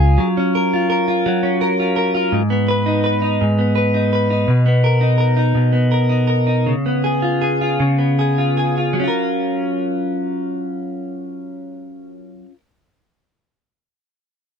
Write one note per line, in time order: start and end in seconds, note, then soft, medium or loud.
0.00 0.17 C#2 medium
0.00 0.18 C#3 medium
0.00 0.37 C#4 medium
0.00 0.73 F4 medium
0.00 0.25 G#4 medium
0.18 1.25 F#3 medium
0.37 1.42 C#4 soft
0.55 0.89 A#4 soft
0.74 1.07 F4 soft
0.90 1.60 A#4 soft
1.08 1.79 F4 soft
1.26 2.40 F#3 medium
1.43 2.40 C#4 soft
1.61 1.95 A#4 medium
1.80 2.13 F4 soft
1.96 2.40 A#4 soft
2.15 2.40 F4 soft
2.32 3.40 G#2 medium
2.50 3.58 B3 soft
2.68 3.03 B4 soft
2.86 3.22 D#4 soft
3.04 3.75 B4 soft
3.22 3.94 D#4 soft
3.41 4.47 G#2 medium
3.59 4.65 B3 soft
3.75 4.13 B4 soft
3.94 4.30 D#4 soft
4.13 4.84 B4 soft
4.30 5.00 D#4 soft
4.48 5.54 B2 medium
4.66 5.72 B3 soft
4.84 5.17 A#4 soft
5.01 5.35 D#4 soft
5.18 5.90 A#4 soft
5.37 6.08 D#4 soft
5.55 6.73 B2 medium
5.73 6.86 B3 soft
5.92 6.26 A#4 soft
6.09 6.46 D#4 soft
6.27 6.73 A#4 soft
6.47 6.73 D#4 soft
6.66 7.79 C#3 medium
6.86 7.97 B3 soft
7.04 7.40 G#4 soft
7.22 7.61 F4 soft
7.42 8.18 G#4 soft
7.61 8.38 F4 soft
7.80 9.07 C#3 medium
7.98 8.99 B3 soft
8.19 8.56 G#4 soft
8.38 8.77 F4 soft
8.57 9.07 G#4 soft
8.78 9.03 F4 soft
8.93 12.43 F#3 soft
9.00 12.50 C#4 medium
9.00 12.54 F4 medium
9.08 12.58 A#4 medium